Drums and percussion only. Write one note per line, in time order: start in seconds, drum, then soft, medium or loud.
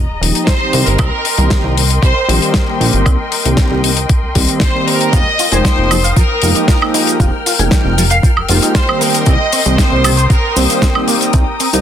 0.23 open hi-hat loud
0.35 closed hi-hat medium
0.47 kick loud
0.47 snare loud
0.47 closed hi-hat medium
0.73 open hi-hat loud
0.87 closed hi-hat medium
0.99 kick loud
0.99 closed hi-hat medium
0.99 high woodblock medium
1.25 open hi-hat loud
1.38 closed hi-hat medium
1.50 kick loud
1.50 snare loud
1.50 closed hi-hat medium
1.78 open hi-hat loud
1.90 closed hi-hat medium
2.03 kick loud
2.03 closed hi-hat medium
2.29 open hi-hat loud
2.42 closed hi-hat medium
2.54 kick loud
2.54 snare loud
2.54 closed hi-hat medium
2.81 open hi-hat loud
2.93 closed hi-hat medium
3.06 kick loud
3.06 closed hi-hat medium
3.06 high woodblock medium
3.32 open hi-hat medium
3.46 closed hi-hat medium
3.57 kick loud
3.57 snare loud
3.57 closed hi-hat medium
3.84 open hi-hat loud
3.97 closed hi-hat medium
4.09 kick loud
4.09 closed hi-hat medium
4.35 kick medium
4.35 open hi-hat loud
4.48 closed hi-hat medium
4.60 kick loud
4.60 snare loud
4.60 closed hi-hat medium
4.88 open hi-hat medium
5.01 closed hi-hat medium
5.13 kick loud
5.13 closed hi-hat medium
5.13 cabasa medium
5.39 open hi-hat loud
5.39 cabasa medium
5.52 closed hi-hat medium
5.52 cabasa medium
5.65 kick loud
5.65 snare loud
5.65 closed hi-hat medium
5.65 cabasa medium
5.91 open hi-hat loud
5.91 cabasa medium
5.91 high woodblock medium
6.04 closed hi-hat medium
6.04 cabasa medium
6.17 kick loud
6.17 closed hi-hat medium
6.17 cabasa soft
6.42 open hi-hat loud
6.42 cabasa medium
6.55 closed hi-hat medium
6.55 cabasa medium
6.68 kick loud
6.68 snare loud
6.68 closed hi-hat medium
6.68 cabasa medium
6.82 high woodblock medium
6.94 open hi-hat loud
6.94 cabasa medium
7.07 closed hi-hat medium
7.07 cabasa medium
7.20 kick loud
7.20 closed hi-hat medium
7.20 cabasa medium
7.46 open hi-hat loud
7.46 cabasa medium
7.59 closed hi-hat medium
7.59 cabasa medium
7.71 kick loud
7.71 snare loud
7.71 closed hi-hat medium
7.71 cabasa medium
7.98 open hi-hat loud
7.98 cabasa medium
8.10 closed hi-hat medium
8.10 cabasa medium
8.23 kick loud
8.23 closed hi-hat medium
8.23 cabasa soft
8.37 high woodblock medium
8.49 open hi-hat loud
8.49 cabasa medium
8.62 closed hi-hat medium
8.62 cabasa medium
8.75 kick loud
8.75 snare loud
8.75 closed hi-hat medium
8.75 cabasa medium
8.89 high woodblock medium
9.01 open hi-hat loud
9.01 cabasa medium
9.14 closed hi-hat medium
9.14 cabasa medium
9.26 kick loud
9.26 closed hi-hat medium
9.26 cabasa soft
9.53 open hi-hat loud
9.53 cabasa medium
9.66 closed hi-hat medium
9.66 cabasa medium
9.78 kick loud
9.78 snare loud
9.78 closed hi-hat medium
9.78 cabasa medium
10.04 open hi-hat loud
10.04 cabasa medium
10.04 high woodblock medium
10.17 closed hi-hat medium
10.17 cabasa medium
10.30 kick loud
10.30 closed hi-hat medium
10.30 cabasa soft
10.57 open hi-hat loud
10.57 cabasa medium
10.70 closed hi-hat medium
10.70 cabasa medium
10.82 kick loud
10.82 snare loud
10.82 closed hi-hat medium
10.82 cabasa medium
10.95 high woodblock medium
11.08 open hi-hat loud
11.08 cabasa medium
11.21 closed hi-hat medium
11.21 cabasa medium
11.33 kick loud
11.33 closed hi-hat medium
11.33 cabasa soft
11.60 open hi-hat loud
11.60 cabasa medium
11.73 closed hi-hat medium
11.73 cabasa medium